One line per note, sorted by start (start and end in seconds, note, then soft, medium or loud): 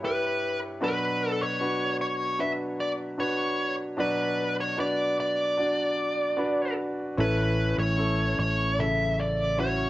0.00 0.02 E4 medium
0.00 0.77 E4 medium
0.00 0.03 G4 medium
0.00 0.77 G4 medium
0.00 0.82 A4 medium
0.00 0.78 B4 medium
0.00 0.82 C#5 medium
0.05 0.59 B4 medium
0.81 1.95 B2 soft
0.81 1.96 F#3 medium
0.81 1.56 D4 medium
0.81 1.56 F#4 medium
0.81 1.57 B4 medium
0.81 1.30 B4 medium
1.30 1.42 A4 medium
1.42 1.96 C#5 medium
1.60 2.35 D4 medium
1.60 2.35 F#4 medium
1.60 2.36 B4 medium
2.01 2.41 C#5 medium
2.39 3.14 D4 medium
2.39 3.14 F#4 soft
2.39 3.15 B4 medium
2.39 2.51 E5 medium
2.80 2.91 D5 medium
3.18 3.94 D4 medium
3.18 3.94 F#4 medium
3.18 3.94 B4 medium
3.18 3.75 C#5 medium
3.97 5.14 B2 soft
3.97 5.14 F#3 medium
3.97 4.74 D4 medium
3.97 4.74 F#4 medium
3.97 4.55 B4 medium
3.97 4.74 D5 medium
4.61 4.78 C#5 medium
4.77 5.53 D4 medium
4.77 5.54 F#4 medium
4.77 5.54 B4 medium
4.77 5.16 D5 medium
5.20 6.75 D5 medium
5.57 6.34 D4 medium
5.57 6.34 F#4 soft
5.57 6.34 D5 medium
6.37 7.14 D4 medium
6.37 7.14 F#4 medium
6.37 7.14 B4 medium
7.17 7.74 A1 medium
7.17 8.35 A2 soft
7.17 8.35 E3 soft
7.17 7.94 C#4 medium
7.17 7.94 E4 medium
7.17 7.95 A4 medium
7.17 7.76 B4 medium
7.78 8.34 A1 medium
7.78 8.38 C#5 medium
7.97 8.74 C#4 medium
7.97 8.75 E4 soft
7.97 8.75 A4 medium
8.39 9.90 A1 medium
8.39 8.80 C#5 medium
8.78 9.54 C#3 medium
8.78 9.55 E4 medium
8.78 9.55 A4 medium
8.78 9.21 E5 medium
9.20 9.59 D5 medium
9.57 9.90 C#4 medium
9.57 9.90 E4 medium
9.57 9.90 F#4 medium
9.57 9.90 C#5 medium